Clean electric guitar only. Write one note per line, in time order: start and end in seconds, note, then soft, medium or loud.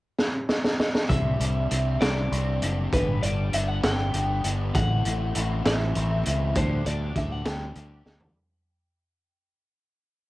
1.09 2.04 E5 medium
2.01 2.89 D5 medium
2.94 3.22 B4 medium
3.23 3.54 D5 medium
3.54 3.68 E5 medium
3.68 3.84 F#5 medium
3.84 4.49 G5 loud
4.75 5.67 F#5 medium
5.67 6.60 E5 medium
6.57 6.86 C5 medium
6.87 7.17 D5 medium
7.18 7.32 E5 medium
7.32 7.47 F#5 medium
7.47 8.14 G5 medium